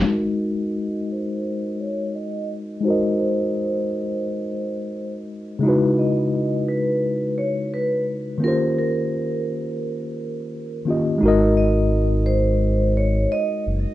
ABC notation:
X:1
M:4/4
L:1/16
Q:"Swing 16ths" 1/4=86
K:G#m
V:1 name="Vibraphone"
z2 d4 ^B4 c2 d2 z2 | ^B2 B8- B3 z3 | z2 d4 B4 c2 B2 z2 | A2 A8- A3 z3 |
z2 d4 ^B4 c2 d2 z2 |]
V:2 name="Tine electric piano"
[G,DFAd]16 | [G,DFAd]16 | [C,G,DEFB]16 | [D,A,C^E=G^B]12- [D,A,CEGB]2 [D,A,CEGd]2 |
[G,DFAd]16 |]
V:3 name="Sub bass" clef=bass
z16 | z16 | z16 | z16 |
G,,,12 z2 F,,, z |]